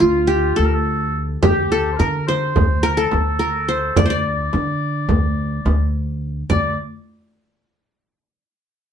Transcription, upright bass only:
0.02 0.53 D2 medium
0.58 1.34 D2 medium
1.44 1.94 D2 medium
2.00 2.50 D3 medium
2.57 3.07 D2 medium
3.13 3.88 D2 medium
3.97 4.47 D2 medium
4.53 5.04 D3 medium
5.09 5.59 D2 medium
5.65 6.41 D2 medium
6.50 6.76 D2 medium

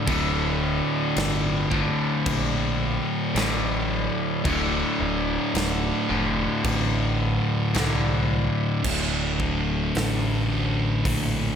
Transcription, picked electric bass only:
0.07 0.80 D1 loud
1.16 1.89 G1 medium
2.26 2.99 A#1 loud
3.34 4.07 A1 loud
4.46 4.82 D1 medium
5.00 5.36 D1 loud
5.54 5.91 D1 loud
6.09 6.46 F1 medium
6.64 7.37 A1 loud
7.75 8.48 C2 loud
8.84 9.91 D1 medium
9.96 11.02 A1 medium
11.06 11.55 A#1 medium

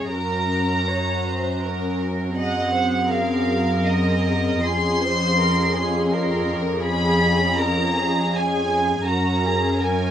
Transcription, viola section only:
0.00 0.10 C#4 soft
0.00 0.11 G#4 soft
0.12 2.33 C#4 soft
0.12 2.37 F#4 soft
2.36 3.86 C4 soft
2.36 3.83 G#4 soft
3.87 4.64 C4 soft
3.87 4.64 G#4 soft
4.67 6.84 C#4 soft
4.67 6.81 G#4 soft
6.85 8.30 C#4 soft
6.85 8.30 G#4 soft
8.33 9.05 C#4 soft
8.33 9.06 G#4 soft
9.06 10.11 C#4 soft
9.06 10.11 A#4 soft

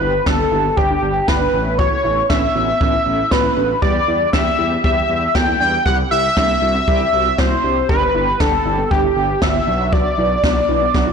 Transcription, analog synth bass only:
0.01 0.19 G1 loud
0.27 0.44 G1 medium
0.52 0.70 G1 loud
0.77 0.95 G1 loud
1.03 1.21 G1 medium
1.28 1.46 G1 loud
1.54 1.89 A1 loud
2.05 2.22 A1 loud
2.30 2.48 A1 loud
2.55 2.73 A1 loud
2.81 2.99 A1 loud
3.06 3.24 A1 medium
3.31 3.49 A1 loud
3.57 3.75 A1 loud
3.82 4.00 E2 medium
4.08 4.26 E2 loud
4.33 4.51 E2 loud
4.59 4.77 E2 medium
4.84 5.02 E2 loud
5.09 5.27 E2 loud
5.35 5.53 E2 loud
5.60 5.78 E2 loud
5.86 6.04 C2 loud
6.11 6.29 C2 loud
6.37 6.55 C2 loud
6.62 6.80 C2 loud
6.88 7.05 C2 loud
7.13 7.31 C2 loud
7.38 7.56 C2 medium
7.64 7.82 C2 loud
7.89 8.07 G1 medium
8.15 8.32 G1 loud
8.40 8.58 G1 loud
8.65 8.83 G1 loud
8.91 9.09 G1 loud
9.16 9.34 G1 loud
9.42 9.60 G1 loud
9.67 10.03 B1 loud
10.18 10.36 B1 loud
10.44 10.61 B1 loud
10.69 10.87 B1 loud
10.94 11.12 B1 loud

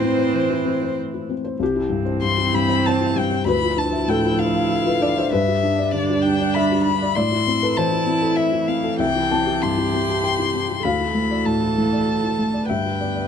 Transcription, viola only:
0.00 1.29 E3 medium
1.62 3.44 C4 medium
3.48 5.28 E4 medium
5.31 7.12 D4 medium
7.17 8.95 E4 medium
8.99 10.79 G4 medium
10.83 12.65 A4 medium
12.69 13.28 B4 medium

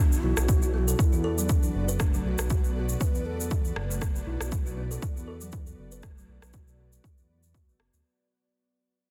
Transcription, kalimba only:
0.23 0.31 E4 medium
0.37 0.47 F#4 loud
0.62 0.72 F#4 medium
0.74 0.87 B3 medium
0.88 0.98 A4 medium
1.13 1.23 F#4 medium
1.24 1.37 A4 loud
1.38 1.48 F#3 medium
1.88 1.99 B4 medium
2.00 2.12 A3 loud
2.14 2.24 F#3 medium
2.39 2.50 B4 medium
2.50 2.63 F#4 medium
3.90 4.00 A3 medium
4.27 4.34 E4 medium
4.40 4.51 F#4 loud
4.66 4.76 F#4 medium
4.77 4.90 B3 medium
4.91 5.02 A4 medium
5.16 5.26 F#4 medium
5.27 5.40 A4 medium
5.41 5.52 F#3 medium
5.92 6.03 B4 medium
6.03 6.16 A3 medium
6.17 6.27 F#3 medium
6.42 6.53 B4 medium
6.53 6.66 F#4 medium
7.54 7.67 F#4 medium
7.68 7.74 B3 medium
7.79 7.92 B3 medium
7.93 8.04 B3 medium

